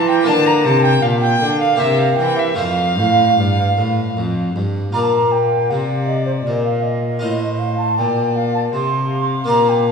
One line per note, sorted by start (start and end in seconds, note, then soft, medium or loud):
0.00 0.24 E3 medium
0.00 0.29 E3 medium
0.00 0.22 G4 medium
0.00 0.22 C5 medium
0.08 0.26 G5 medium
0.08 0.29 G5 medium
0.23 1.74 A#3 medium
0.23 1.75 F4 medium
0.23 1.76 A#4 medium
0.23 0.32 A5 loud
0.27 0.61 D3 medium
0.27 0.67 D3 medium
0.27 0.48 A5 loud
0.46 0.52 A#5 medium
0.46 0.66 A#5 medium
0.64 1.02 C3 medium
0.64 0.99 C3 medium
0.64 0.84 A5 medium
0.64 0.82 A5 medium
0.82 1.01 G5 medium
0.82 1.04 G5 medium
1.02 1.41 A#2 medium
1.02 1.38 A#2 medium
1.02 1.08 F5 medium
1.02 1.22 F5 medium
1.19 1.61 G5 medium
1.19 1.60 G5 loud
1.41 1.76 D3 medium
1.41 1.80 D3 medium
1.59 1.79 F5 medium
1.59 1.82 F5 medium
1.75 2.54 A#3 medium
1.75 2.55 G4 medium
1.75 2.55 C5 medium
1.75 1.98 E5 medium
1.80 2.15 C3 medium
1.80 2.19 C3 medium
1.80 2.01 E5 medium
1.97 2.18 F5 medium
1.97 2.19 F5 medium
2.16 2.55 E3 medium
2.16 2.58 E3 medium
2.16 2.37 G5 medium
2.16 2.41 G5 medium
2.36 2.57 E5 medium
2.54 3.33 A3 medium
2.54 4.89 F4 medium
2.54 4.89 C5 medium
2.54 4.51 F5 medium
2.54 4.51 F5 loud
2.58 3.00 F2 medium
2.58 2.94 F2 medium
2.99 3.34 A2 medium
2.99 3.37 A2 medium
3.38 3.76 G2 medium
3.38 3.74 G2 medium
3.77 4.15 A2 medium
3.77 4.13 A2 medium
4.16 4.55 F2 medium
4.16 4.52 F2 medium
4.55 4.93 G2 medium
4.55 4.91 G2 medium
4.92 5.72 A#2 medium
4.92 5.67 A#2 soft
4.92 7.17 F4 soft
4.92 7.18 D5 soft
4.92 4.99 A#5 medium
5.02 5.11 A5 medium
5.10 5.33 A#5 medium
5.32 5.72 G5 medium
5.70 6.45 C3 medium
5.70 6.42 C3 soft
5.70 6.48 D5 medium
5.70 6.07 F5 medium
6.07 6.25 D#5 medium
6.26 6.32 C5 medium
6.44 7.23 A#2 medium
6.44 7.18 A#2 soft
6.44 7.22 A#4 medium
6.44 6.63 D5 medium
6.65 6.84 F5 medium
6.83 7.60 D#5 medium
7.19 8.00 A2 medium
7.19 7.94 A2 soft
7.19 9.43 F4 soft
7.19 7.96 C5 medium
7.19 9.44 D#5 soft
7.59 7.77 F5 medium
7.78 7.97 A5 medium
7.98 8.70 A#2 soft
7.98 8.73 A#2 medium
7.98 8.74 D5 medium
7.98 8.37 G5 medium
8.36 8.54 F5 medium
8.54 8.61 A5 medium
8.73 9.44 C3 soft
8.73 9.47 C3 medium
8.73 9.09 C5 medium
8.73 9.24 C6 medium
9.10 9.92 F5 medium
9.44 9.92 A#3 soft
9.44 9.92 F4 soft
9.44 9.92 D5 soft
9.49 9.92 A#2 medium
9.49 9.92 A#2 soft
9.49 9.71 A#5 medium
9.69 9.87 G5 medium
9.88 9.92 A5 medium